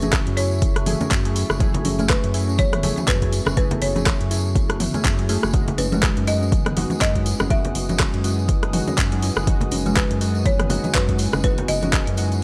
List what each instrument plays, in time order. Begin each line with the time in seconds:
Already playing: analog synth bass F#1, analog synth pad F#4 E5 C#6, marimba B4
0.01 synth keys A3 E4 G#4, kalimba C#4, closed hi-hat, tambourine, high conga
0.13 kalimba C#3, kick, cross-stick, clap, closed hi-hat
0.26 analog synth bass F#2, closed hi-hat, muted conga
0.37 synth keys A3 E4 G#4, kalimba E4, marimba C#5, open hi-hat, tambourine
0.51 tambourine
0.62 analog synth bass F#1, kalimba E4, kick, closed hi-hat, tambourine, muted conga
0.76 kalimba C#3, cross-stick, closed hi-hat
0.86 kalimba F#3, synth keys A3 E4 G#4, open hi-hat, mid tom, tambourine, high conga
1.01 kalimba C#4, closed hi-hat, mid tom, tambourine, muted conga, low conga
1.11 analog synth bass F#2, kick, clap, closed hi-hat, tambourine
1.25 kalimba F#3, synth keys A3 E4 G#4, closed hi-hat
1.36 kalimba E4, open hi-hat, tambourine
1.50 analog synth bass F#1, cross-stick, tambourine, muted conga
1.59 kalimba F#3, synth keys A3 E4 G#4, kick, closed hi-hat, tambourine, high conga
1.74 closed hi-hat, low conga
1.85 analog synth bass F#1, kalimba C#4, open hi-hat, tambourine, muted conga, high conga
1.99 synth keys A3 E4 G#4, kalimba A3, closed hi-hat, tambourine, high conga
2.09 marimba B4, kick, cross-stick, clap, closed hi-hat
2.23 analog synth bass F#2, closed hi-hat, muted conga
2.34 synth keys A3 E4 G#4, open hi-hat, tambourine
2.48 kalimba C#4, tambourine
2.58 analog synth bass F#1, marimba C#5, kick, closed hi-hat, tambourine, muted conga, high conga
2.73 kalimba B3, cross-stick, closed hi-hat, mid tom
2.83 kalimba F#3, synth keys A3 E4 G#4, open hi-hat, tambourine, high conga, low conga
2.97 closed hi-hat, mid tom, tambourine, muted conga, high conga
3.08 analog synth bass F#2, marimba B4, kick, clap, closed hi-hat
3.22 synth keys A3 E4 G#4, kalimba C#4, kick, closed hi-hat
3.33 kalimba E4, open hi-hat, tambourine
3.46 analog synth bass F#1, kalimba C#4, cross-stick, tambourine, muted conga, low conga
3.57 synth keys A3 E4 G#4, kalimba E4, marimba B4, kick, closed hi-hat, tambourine, high conga
3.71 kalimba B3, closed hi-hat, low conga
3.81 analog synth bass F#1, marimba C#5, open hi-hat, tambourine, muted conga
3.96 synth keys A3 E4 G#4, kalimba C#4, closed hi-hat, tambourine, high conga
4.06 kalimba C#3, kick, cross-stick, clap, closed hi-hat, tambourine
4.21 analog synth bass F#2, closed hi-hat, muted conga
4.31 synth keys A3 E4 G#4, kalimba E4, open hi-hat, tambourine
4.45 tambourine
4.55 analog synth bass F#1, kalimba E4, kick, closed hi-hat, tambourine, muted conga
4.70 kalimba C#3, cross-stick, closed hi-hat
4.80 kalimba B3, open hi-hat, mid tom, tambourine, high conga
4.94 synth keys A3 E4 G#4, kalimba A3, closed hi-hat, mid tom, tambourine, muted conga, low conga
5.05 analog synth bass F#2, kick, clap, closed hi-hat
5.19 kalimba F#3, closed hi-hat
5.29 kalimba A3, synth keys A3 E4 G#4, open hi-hat, tambourine
5.43 analog synth bass F#1, cross-stick, tambourine, muted conga
5.54 kalimba F#3, synth keys G#3 D#4 F#4, analog synth pad G#3 B4 G#5 D#6, kick, closed hi-hat, tambourine, high conga
5.68 closed hi-hat, low conga
5.78 analog synth bass F#1, kalimba C#4, marimba B4, open hi-hat, tambourine, muted conga, high conga
5.92 synth keys G#3 D#4 F#4, kalimba G#3, closed hi-hat, tambourine, high conga
6.03 kick, cross-stick, clap, closed hi-hat, tambourine
6.17 analog synth bass F#2, closed hi-hat, muted conga
6.27 synth keys G#3 D#4 F#4, marimba D#5, open hi-hat, tambourine
6.42 kalimba C#4, tambourine
6.52 analog synth bass F#1, kick, closed hi-hat, tambourine, muted conga, high conga
6.66 kalimba B3, cross-stick, closed hi-hat, mid tom
6.77 kalimba F#3, synth keys G#3 D#4 F#4, open hi-hat, tambourine, high conga, low conga
6.90 closed hi-hat, mid tom, tambourine, muted conga, high conga
7.01 analog synth bass F#2, marimba D#5, kick, clap, closed hi-hat
7.15 synth keys G#3 D#4 F#4, kalimba C#4, kick, closed hi-hat
7.26 kalimba E4, open hi-hat, tambourine
7.39 analog synth bass F#1, kalimba C#4, cross-stick, tambourine, muted conga, low conga
7.50 synth keys D#3 G#3 F#4, kalimba E4, marimba E5, kick, closed hi-hat, tambourine, high conga
7.64 kalimba B3, closed hi-hat, low conga
7.75 analog synth bass F#1, open hi-hat, tambourine, muted conga
7.89 synth keys D#3 G#3 F#4, kalimba C#4, closed hi-hat, tambourine, high conga
7.99 kalimba C#3, kick, cross-stick, clap, closed hi-hat
8.13 analog synth bass F#2, closed hi-hat, muted conga
8.24 synth keys D#3 G#3 F#4, kalimba E4, open hi-hat, tambourine
8.39 tambourine
8.48 analog synth bass F#1, kalimba E4, kick, closed hi-hat, tambourine, muted conga
8.63 kalimba C#3, cross-stick, closed hi-hat
8.73 kalimba F#3, synth keys G#3 D#4 F#4, open hi-hat, mid tom, tambourine, high conga
8.87 kalimba C#4, closed hi-hat, mid tom, tambourine, muted conga, low conga
8.97 analog synth bass F#2, kick, clap, closed hi-hat, tambourine
9.12 kalimba F#3, synth keys G#3 D#4 F#4, closed hi-hat
9.22 kalimba E4, open hi-hat, tambourine
9.36 analog synth bass F#1, cross-stick, tambourine, muted conga
9.47 kalimba F#3, synth keys G#3 D#4 F#4, kick, closed hi-hat, tambourine, high conga
9.61 closed hi-hat, low conga
9.71 analog synth bass F#1, kalimba C#4, open hi-hat, tambourine, muted conga, high conga
9.86 synth keys G#3 D#4 F#4, kalimba G#3, closed hi-hat, tambourine, high conga
9.96 marimba B4, kick, cross-stick, clap, closed hi-hat, tambourine
10.10 analog synth bass F#2, closed hi-hat, muted conga
10.21 synth keys G#3 D#4 F#4, open hi-hat, tambourine
10.35 kalimba C#4, tambourine
10.46 analog synth bass F#1, marimba C#5, kick, closed hi-hat, muted conga, high conga
10.60 kalimba B3, cross-stick, closed hi-hat, mid tom
10.70 kalimba F#3, synth keys G#3 D#4 F#4, open hi-hat, tambourine, high conga, low conga
10.84 closed hi-hat, mid tom, tambourine, muted conga, high conga
10.94 analog synth bass F#2, marimba B4, kick, clap, closed hi-hat, tambourine
11.09 synth keys G#3 D#4 F#4, kalimba C#4, kick, closed hi-hat
11.18 kalimba E4, open hi-hat, tambourine
11.33 analog synth bass F#1, kalimba C#4, cross-stick, tambourine, muted conga, low conga
11.44 synth keys G#3 D#4 F#4, kalimba E4, marimba B4, kick, closed hi-hat, tambourine, high conga
11.58 kalimba B3, closed hi-hat, low conga
11.68 analog synth bass F#1, marimba D#5, open hi-hat, tambourine, muted conga, high conga
11.82 synth keys G#3 D#4 F#4, kalimba C#4, closed hi-hat, tambourine, high conga
11.93 kalimba C#3, kick, cross-stick, clap, closed hi-hat
12.07 analog synth bass F#2, closed hi-hat, muted conga
12.17 synth keys G#3 D#4 F#4, kalimba E4, open hi-hat, tambourine
12.32 closed hi-hat, tambourine